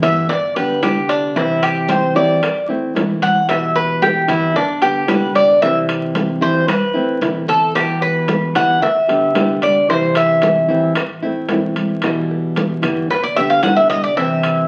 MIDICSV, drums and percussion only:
0, 0, Header, 1, 2, 480
1, 0, Start_track
1, 0, Tempo, 533808
1, 1227, Time_signature, 4, 2, 24, 8
1, 13198, End_track
2, 0, Start_track
2, 0, Title_t, "Drums"
2, 22, Note_on_c, 9, 64, 79
2, 26, Note_on_c, 9, 65, 95
2, 32, Note_on_c, 9, 60, 34
2, 34, Note_on_c, 9, 75, 64
2, 112, Note_off_c, 9, 64, 0
2, 116, Note_off_c, 9, 65, 0
2, 122, Note_off_c, 9, 60, 0
2, 124, Note_off_c, 9, 75, 0
2, 264, Note_on_c, 9, 63, 33
2, 267, Note_on_c, 9, 60, 67
2, 354, Note_off_c, 9, 63, 0
2, 357, Note_off_c, 9, 60, 0
2, 509, Note_on_c, 9, 63, 33
2, 509, Note_on_c, 9, 65, 65
2, 514, Note_on_c, 9, 60, 30
2, 599, Note_off_c, 9, 63, 0
2, 599, Note_off_c, 9, 65, 0
2, 604, Note_off_c, 9, 60, 0
2, 740, Note_on_c, 9, 63, 78
2, 744, Note_on_c, 9, 65, 85
2, 744, Note_on_c, 9, 66, 77
2, 749, Note_on_c, 9, 75, 64
2, 753, Note_on_c, 9, 60, 35
2, 753, Note_on_c, 9, 61, 79
2, 830, Note_off_c, 9, 63, 0
2, 834, Note_off_c, 9, 65, 0
2, 834, Note_off_c, 9, 66, 0
2, 839, Note_off_c, 9, 75, 0
2, 843, Note_off_c, 9, 60, 0
2, 843, Note_off_c, 9, 61, 0
2, 983, Note_on_c, 9, 65, 73
2, 1073, Note_off_c, 9, 65, 0
2, 1225, Note_on_c, 9, 63, 34
2, 1234, Note_on_c, 9, 60, 71
2, 1315, Note_off_c, 9, 63, 0
2, 1324, Note_off_c, 9, 60, 0
2, 1462, Note_on_c, 9, 63, 34
2, 1464, Note_on_c, 9, 65, 92
2, 1470, Note_on_c, 9, 75, 63
2, 1477, Note_on_c, 9, 60, 36
2, 1552, Note_off_c, 9, 63, 0
2, 1554, Note_off_c, 9, 65, 0
2, 1560, Note_off_c, 9, 75, 0
2, 1567, Note_off_c, 9, 60, 0
2, 1696, Note_on_c, 9, 63, 90
2, 1705, Note_on_c, 9, 65, 68
2, 1705, Note_on_c, 9, 66, 61
2, 1716, Note_on_c, 9, 60, 61
2, 1786, Note_off_c, 9, 63, 0
2, 1795, Note_off_c, 9, 65, 0
2, 1795, Note_off_c, 9, 66, 0
2, 1806, Note_off_c, 9, 60, 0
2, 1954, Note_on_c, 9, 60, 35
2, 2044, Note_off_c, 9, 60, 0
2, 2181, Note_on_c, 9, 63, 32
2, 2183, Note_on_c, 9, 65, 88
2, 2188, Note_on_c, 9, 75, 68
2, 2190, Note_on_c, 9, 60, 68
2, 2271, Note_off_c, 9, 63, 0
2, 2273, Note_off_c, 9, 65, 0
2, 2278, Note_off_c, 9, 75, 0
2, 2280, Note_off_c, 9, 60, 0
2, 2425, Note_on_c, 9, 63, 33
2, 2432, Note_on_c, 9, 60, 29
2, 2515, Note_off_c, 9, 63, 0
2, 2522, Note_off_c, 9, 60, 0
2, 2663, Note_on_c, 9, 63, 88
2, 2666, Note_on_c, 9, 65, 71
2, 2666, Note_on_c, 9, 66, 82
2, 2671, Note_on_c, 9, 60, 36
2, 2671, Note_on_c, 9, 61, 86
2, 2753, Note_off_c, 9, 63, 0
2, 2756, Note_off_c, 9, 65, 0
2, 2756, Note_off_c, 9, 66, 0
2, 2761, Note_off_c, 9, 60, 0
2, 2761, Note_off_c, 9, 61, 0
2, 2897, Note_on_c, 9, 65, 67
2, 2903, Note_on_c, 9, 63, 81
2, 2987, Note_off_c, 9, 65, 0
2, 2993, Note_off_c, 9, 63, 0
2, 3136, Note_on_c, 9, 65, 81
2, 3143, Note_on_c, 9, 63, 34
2, 3146, Note_on_c, 9, 75, 68
2, 3151, Note_on_c, 9, 60, 69
2, 3226, Note_off_c, 9, 65, 0
2, 3233, Note_off_c, 9, 63, 0
2, 3236, Note_off_c, 9, 75, 0
2, 3241, Note_off_c, 9, 60, 0
2, 3379, Note_on_c, 9, 63, 35
2, 3388, Note_on_c, 9, 60, 34
2, 3469, Note_off_c, 9, 63, 0
2, 3477, Note_off_c, 9, 60, 0
2, 3616, Note_on_c, 9, 63, 89
2, 3621, Note_on_c, 9, 65, 70
2, 3621, Note_on_c, 9, 66, 63
2, 3626, Note_on_c, 9, 60, 61
2, 3706, Note_off_c, 9, 63, 0
2, 3710, Note_off_c, 9, 65, 0
2, 3710, Note_off_c, 9, 66, 0
2, 3716, Note_off_c, 9, 60, 0
2, 3853, Note_on_c, 9, 65, 95
2, 3858, Note_on_c, 9, 64, 80
2, 3863, Note_on_c, 9, 75, 66
2, 3869, Note_on_c, 9, 60, 34
2, 3943, Note_off_c, 9, 65, 0
2, 3948, Note_off_c, 9, 64, 0
2, 3953, Note_off_c, 9, 75, 0
2, 3959, Note_off_c, 9, 60, 0
2, 4101, Note_on_c, 9, 60, 60
2, 4103, Note_on_c, 9, 63, 31
2, 4103, Note_on_c, 9, 64, 73
2, 4191, Note_off_c, 9, 60, 0
2, 4193, Note_off_c, 9, 63, 0
2, 4193, Note_off_c, 9, 64, 0
2, 4331, Note_on_c, 9, 65, 69
2, 4337, Note_on_c, 9, 63, 35
2, 4345, Note_on_c, 9, 60, 30
2, 4421, Note_off_c, 9, 65, 0
2, 4427, Note_off_c, 9, 63, 0
2, 4435, Note_off_c, 9, 60, 0
2, 4570, Note_on_c, 9, 63, 81
2, 4571, Note_on_c, 9, 65, 87
2, 4571, Note_on_c, 9, 66, 80
2, 4585, Note_on_c, 9, 75, 64
2, 4586, Note_on_c, 9, 60, 33
2, 4586, Note_on_c, 9, 61, 89
2, 4660, Note_off_c, 9, 63, 0
2, 4661, Note_off_c, 9, 65, 0
2, 4661, Note_off_c, 9, 66, 0
2, 4675, Note_off_c, 9, 60, 0
2, 4675, Note_off_c, 9, 61, 0
2, 4675, Note_off_c, 9, 75, 0
2, 4811, Note_on_c, 9, 63, 69
2, 4814, Note_on_c, 9, 65, 68
2, 4900, Note_off_c, 9, 63, 0
2, 4904, Note_off_c, 9, 65, 0
2, 5049, Note_on_c, 9, 63, 36
2, 5058, Note_on_c, 9, 60, 70
2, 5139, Note_off_c, 9, 63, 0
2, 5148, Note_off_c, 9, 60, 0
2, 5292, Note_on_c, 9, 63, 36
2, 5295, Note_on_c, 9, 65, 95
2, 5300, Note_on_c, 9, 75, 60
2, 5302, Note_on_c, 9, 60, 37
2, 5382, Note_off_c, 9, 63, 0
2, 5385, Note_off_c, 9, 65, 0
2, 5390, Note_off_c, 9, 75, 0
2, 5392, Note_off_c, 9, 60, 0
2, 5530, Note_on_c, 9, 63, 91
2, 5531, Note_on_c, 9, 65, 75
2, 5531, Note_on_c, 9, 66, 59
2, 5543, Note_on_c, 9, 60, 61
2, 5620, Note_off_c, 9, 63, 0
2, 5621, Note_off_c, 9, 65, 0
2, 5621, Note_off_c, 9, 66, 0
2, 5633, Note_off_c, 9, 60, 0
2, 5784, Note_on_c, 9, 60, 35
2, 5874, Note_off_c, 9, 60, 0
2, 6011, Note_on_c, 9, 63, 81
2, 6011, Note_on_c, 9, 65, 89
2, 6019, Note_on_c, 9, 60, 69
2, 6020, Note_on_c, 9, 75, 67
2, 6100, Note_off_c, 9, 63, 0
2, 6101, Note_off_c, 9, 65, 0
2, 6109, Note_off_c, 9, 60, 0
2, 6110, Note_off_c, 9, 75, 0
2, 6256, Note_on_c, 9, 60, 31
2, 6345, Note_off_c, 9, 60, 0
2, 6487, Note_on_c, 9, 64, 79
2, 6493, Note_on_c, 9, 65, 71
2, 6493, Note_on_c, 9, 66, 79
2, 6495, Note_on_c, 9, 60, 36
2, 6495, Note_on_c, 9, 61, 79
2, 6577, Note_off_c, 9, 64, 0
2, 6583, Note_off_c, 9, 65, 0
2, 6583, Note_off_c, 9, 66, 0
2, 6585, Note_off_c, 9, 60, 0
2, 6585, Note_off_c, 9, 61, 0
2, 6729, Note_on_c, 9, 64, 81
2, 6736, Note_on_c, 9, 65, 67
2, 6819, Note_off_c, 9, 64, 0
2, 6826, Note_off_c, 9, 65, 0
2, 6969, Note_on_c, 9, 63, 35
2, 6976, Note_on_c, 9, 65, 79
2, 6976, Note_on_c, 9, 75, 68
2, 6977, Note_on_c, 9, 60, 67
2, 7059, Note_off_c, 9, 63, 0
2, 7065, Note_off_c, 9, 65, 0
2, 7066, Note_off_c, 9, 75, 0
2, 7067, Note_off_c, 9, 60, 0
2, 7211, Note_on_c, 9, 63, 35
2, 7223, Note_on_c, 9, 60, 34
2, 7301, Note_off_c, 9, 63, 0
2, 7313, Note_off_c, 9, 60, 0
2, 7447, Note_on_c, 9, 65, 75
2, 7447, Note_on_c, 9, 66, 59
2, 7452, Note_on_c, 9, 63, 97
2, 7458, Note_on_c, 9, 60, 59
2, 7537, Note_off_c, 9, 65, 0
2, 7537, Note_off_c, 9, 66, 0
2, 7542, Note_off_c, 9, 63, 0
2, 7548, Note_off_c, 9, 60, 0
2, 7690, Note_on_c, 9, 65, 100
2, 7693, Note_on_c, 9, 64, 82
2, 7700, Note_on_c, 9, 60, 35
2, 7700, Note_on_c, 9, 75, 64
2, 7780, Note_off_c, 9, 65, 0
2, 7783, Note_off_c, 9, 64, 0
2, 7790, Note_off_c, 9, 60, 0
2, 7790, Note_off_c, 9, 75, 0
2, 7931, Note_on_c, 9, 63, 33
2, 7931, Note_on_c, 9, 64, 70
2, 7942, Note_on_c, 9, 60, 64
2, 8021, Note_off_c, 9, 63, 0
2, 8021, Note_off_c, 9, 64, 0
2, 8031, Note_off_c, 9, 60, 0
2, 8174, Note_on_c, 9, 63, 33
2, 8176, Note_on_c, 9, 65, 64
2, 8178, Note_on_c, 9, 60, 31
2, 8264, Note_off_c, 9, 63, 0
2, 8266, Note_off_c, 9, 65, 0
2, 8268, Note_off_c, 9, 60, 0
2, 8410, Note_on_c, 9, 65, 88
2, 8410, Note_on_c, 9, 66, 78
2, 8412, Note_on_c, 9, 63, 86
2, 8419, Note_on_c, 9, 60, 34
2, 8419, Note_on_c, 9, 61, 84
2, 8424, Note_on_c, 9, 75, 65
2, 8500, Note_off_c, 9, 65, 0
2, 8500, Note_off_c, 9, 66, 0
2, 8502, Note_off_c, 9, 63, 0
2, 8509, Note_off_c, 9, 60, 0
2, 8509, Note_off_c, 9, 61, 0
2, 8514, Note_off_c, 9, 75, 0
2, 8651, Note_on_c, 9, 65, 68
2, 8656, Note_on_c, 9, 63, 70
2, 8741, Note_off_c, 9, 65, 0
2, 8746, Note_off_c, 9, 63, 0
2, 8901, Note_on_c, 9, 60, 74
2, 8991, Note_off_c, 9, 60, 0
2, 9128, Note_on_c, 9, 65, 98
2, 9137, Note_on_c, 9, 63, 32
2, 9143, Note_on_c, 9, 60, 36
2, 9146, Note_on_c, 9, 75, 62
2, 9218, Note_off_c, 9, 65, 0
2, 9227, Note_off_c, 9, 63, 0
2, 9233, Note_off_c, 9, 60, 0
2, 9236, Note_off_c, 9, 75, 0
2, 9368, Note_on_c, 9, 65, 76
2, 9368, Note_on_c, 9, 66, 63
2, 9379, Note_on_c, 9, 63, 94
2, 9384, Note_on_c, 9, 60, 61
2, 9458, Note_off_c, 9, 65, 0
2, 9458, Note_off_c, 9, 66, 0
2, 9469, Note_off_c, 9, 63, 0
2, 9474, Note_off_c, 9, 60, 0
2, 9621, Note_on_c, 9, 60, 35
2, 9711, Note_off_c, 9, 60, 0
2, 9850, Note_on_c, 9, 65, 99
2, 9860, Note_on_c, 9, 63, 33
2, 9861, Note_on_c, 9, 75, 72
2, 9863, Note_on_c, 9, 60, 65
2, 9940, Note_off_c, 9, 65, 0
2, 9950, Note_off_c, 9, 63, 0
2, 9951, Note_off_c, 9, 75, 0
2, 9953, Note_off_c, 9, 60, 0
2, 10102, Note_on_c, 9, 60, 30
2, 10103, Note_on_c, 9, 63, 33
2, 10192, Note_off_c, 9, 60, 0
2, 10193, Note_off_c, 9, 63, 0
2, 10328, Note_on_c, 9, 65, 65
2, 10328, Note_on_c, 9, 66, 84
2, 10343, Note_on_c, 9, 63, 83
2, 10345, Note_on_c, 9, 60, 36
2, 10345, Note_on_c, 9, 61, 82
2, 10418, Note_off_c, 9, 65, 0
2, 10418, Note_off_c, 9, 66, 0
2, 10433, Note_off_c, 9, 63, 0
2, 10435, Note_off_c, 9, 60, 0
2, 10435, Note_off_c, 9, 61, 0
2, 10575, Note_on_c, 9, 65, 70
2, 10583, Note_on_c, 9, 63, 79
2, 10665, Note_off_c, 9, 65, 0
2, 10672, Note_off_c, 9, 63, 0
2, 10807, Note_on_c, 9, 65, 84
2, 10824, Note_on_c, 9, 60, 68
2, 10830, Note_on_c, 9, 75, 63
2, 10897, Note_off_c, 9, 65, 0
2, 10914, Note_off_c, 9, 60, 0
2, 10920, Note_off_c, 9, 75, 0
2, 11068, Note_on_c, 9, 60, 35
2, 11071, Note_on_c, 9, 63, 35
2, 11158, Note_off_c, 9, 60, 0
2, 11161, Note_off_c, 9, 63, 0
2, 11297, Note_on_c, 9, 65, 74
2, 11297, Note_on_c, 9, 66, 60
2, 11305, Note_on_c, 9, 63, 98
2, 11308, Note_on_c, 9, 60, 59
2, 11387, Note_off_c, 9, 65, 0
2, 11387, Note_off_c, 9, 66, 0
2, 11395, Note_off_c, 9, 63, 0
2, 11398, Note_off_c, 9, 60, 0
2, 11537, Note_on_c, 9, 65, 99
2, 11543, Note_on_c, 9, 64, 89
2, 11548, Note_on_c, 9, 75, 67
2, 11549, Note_on_c, 9, 60, 35
2, 11627, Note_off_c, 9, 65, 0
2, 11633, Note_off_c, 9, 64, 0
2, 11638, Note_off_c, 9, 75, 0
2, 11639, Note_off_c, 9, 60, 0
2, 11784, Note_on_c, 9, 60, 63
2, 11785, Note_on_c, 9, 63, 33
2, 11874, Note_off_c, 9, 60, 0
2, 11875, Note_off_c, 9, 63, 0
2, 12017, Note_on_c, 9, 65, 64
2, 12018, Note_on_c, 9, 63, 31
2, 12029, Note_on_c, 9, 60, 31
2, 12107, Note_off_c, 9, 65, 0
2, 12108, Note_off_c, 9, 63, 0
2, 12119, Note_off_c, 9, 60, 0
2, 12254, Note_on_c, 9, 65, 85
2, 12254, Note_on_c, 9, 66, 83
2, 12259, Note_on_c, 9, 63, 84
2, 12267, Note_on_c, 9, 75, 68
2, 12268, Note_on_c, 9, 60, 32
2, 12268, Note_on_c, 9, 61, 87
2, 12344, Note_off_c, 9, 65, 0
2, 12344, Note_off_c, 9, 66, 0
2, 12348, Note_off_c, 9, 63, 0
2, 12357, Note_off_c, 9, 75, 0
2, 12358, Note_off_c, 9, 60, 0
2, 12358, Note_off_c, 9, 61, 0
2, 12501, Note_on_c, 9, 63, 66
2, 12503, Note_on_c, 9, 65, 67
2, 12591, Note_off_c, 9, 63, 0
2, 12593, Note_off_c, 9, 65, 0
2, 12740, Note_on_c, 9, 63, 38
2, 12743, Note_on_c, 9, 60, 71
2, 12830, Note_off_c, 9, 63, 0
2, 12833, Note_off_c, 9, 60, 0
2, 12979, Note_on_c, 9, 65, 98
2, 12983, Note_on_c, 9, 63, 36
2, 12987, Note_on_c, 9, 60, 36
2, 12993, Note_on_c, 9, 75, 61
2, 13069, Note_off_c, 9, 65, 0
2, 13073, Note_off_c, 9, 63, 0
2, 13077, Note_off_c, 9, 60, 0
2, 13083, Note_off_c, 9, 75, 0
2, 13198, End_track
0, 0, End_of_file